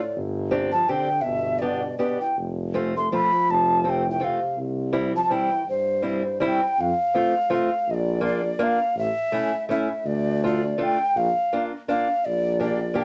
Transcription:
Already playing: A2 D5
0.16 G1
0.51 C4 D4 G4
0.72 F3 A5
0.88 D3 C4 D4 G4 G5
1.21 B2 E5
1.25 G1
1.59 B2 B3 D4 G4 D5
1.98 B2 B3 D4 G4 D5
2.20 E3 G5
2.36 F1
2.74 A3 C4 F4
2.95 A3 C6
3.11 F3 A3 C4 F4 B5
3.48 F1 F3 A5
3.84 C3 A3 C4 F4
3.89 G5
4.05 E3
4.10 G5
4.20 C3 A3 C4 F4
4.24 F5
4.57 C2
4.93 G3 C4 E4
5.12 F3 A5
5.23 F3 A5
5.30 E3 G3 C4 E4 G5
5.67 G2 C5
6.02 G3 C4 E4
6.40 G3 C4 E4
6.47 G5
6.78 F2 F5
7.14 A3 C4 F4
7.50 A3 C4 F4 F5
7.88 A#1 D#5
7.94 D5
8.21 A#3 D4 F4
8.26 D5
8.59 A#3 D4 F4
8.63 F5
8.95 A1 E5
9.32 A3 C#4 E4
9.69 A3 C#4 E4 E5
10.05 D2 D5
10.43 A3 D4 F4 D5
10.78 A3 D4 F4
10.83 G5
11.15 A#1 F5
11.53 A#3 D4 F4
11.88 A#3 D4 F4 F5
12.25 A#1 D5
12.60 A#3 D4 G4 D5
12.94 A#3 D4 G4
13.00 G5

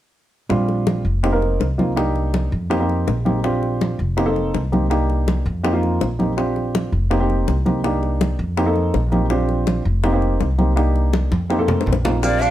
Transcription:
0.49 A#1 G3 C4 D4 F4, high bongo, high conga
0.69 high bongo, high conga
0.87 high bongo, high conga
1.05 F1, high conga
1.23 A#3 C4 D#4 G4, high bongo, high conga
1.32 A#3 C4 D#4 A#4
1.42 high bongo, high conga
1.60 C2, high bongo, low bongo, high conga
1.78 A#3 C4 D#4 F4, high bongo, high conga
1.96 A#3 D4 D#4 G4, high bongo, high conga
2.15 high bongo, high conga
2.34 high bongo, high conga
2.52 F2, high conga
2.70 A#3 C4 D#4 G4, high bongo, high conga
2.79 A#3 C4 D#4 G4
2.89 high bongo, high conga
3.07 A#1, high bongo, low bongo, high conga
3.25 A#3 C4 D#4 G4, high bongo, high conga
3.44 C4 D4 F4 G4, high bongo, high conga
3.63 high bongo, high conga
3.81 high bongo, high conga
3.99 F1, high conga
4.17 A#3 C4 D#4 G4, high bongo, high conga
4.26 A#3 C4 D#4 A4
4.36 high bongo, high conga
4.54 C2, high bongo, low bongo, high conga
4.72 A#3 C4 D#4 G4, high bongo, high conga
4.90 A#3 D4 D#4 G4, high bongo, high conga
5.10 high bongo, high conga
5.28 high bongo, high conga
5.46 F2, high conga
5.63 A#3 C4 D#4 G4, high bongo, high conga
5.73 A#3 C4 D#4 F4
5.83 high bongo, high conga
6.01 A#1, high bongo, low bongo, high conga
6.19 A#3 C4 D#4 G4, high bongo, high conga
6.37 C4 D4 F4 G4, high bongo, high conga
6.56 high bongo, high conga
6.75 high bongo, high conga
6.92 F1, high conga
7.10 A#3 C4 D#4 G4, high bongo, high conga
7.20 A#3 C4 D#4 G4
7.30 high bongo, high conga
7.47 C2, high bongo, low bongo, high conga
7.65 A#3 C4 D#4 G4, high bongo, high conga
7.84 A#3 D4 D#4 G4, high bongo
8.03 high bongo, high conga
8.21 high bongo, high conga
8.39 F2, high conga
8.57 A#3 C4 D#4 G4, high bongo, high conga
8.66 A#3 C4 D#4 A4
8.76 high bongo, high conga
8.94 A#1, high bongo, low bongo, high conga
9.12 A#3 C4 D#4 G4, high bongo, high conga
9.30 C4 D4 F4 G4, high bongo, high conga
9.49 high bongo, high conga
9.67 high bongo, high conga
9.85 F1, high conga
10.04 A#3 C4 D#4 G4, high bongo, high conga
10.13 A#3 C4 D#4 G4
10.22 high bongo, high conga
10.40 C2, high bongo, low bongo, high conga
10.58 A#3 C4 D#4 G4, high bongo, high conga
10.76 A#3 D4 D#4 G4, high bongo, high conga
10.95 high bongo, high conga
11.13 high bongo, high conga
11.31 F2, high conga
11.50 A#3 C4 D#4 G4, high bongo
11.59 A#3 C4 D#4 A4
11.68 high bongo, low conga
11.81 low bongo
11.86 A#1, low conga
11.93 low bongo
12.05 A#3 C4 D#4 F4, low bongo, low conga
12.23 A#3 C4 D4 F4 G4 D5, high bongo, high conga, maracas
12.41 D4 F5, high bongo, high conga, maracas

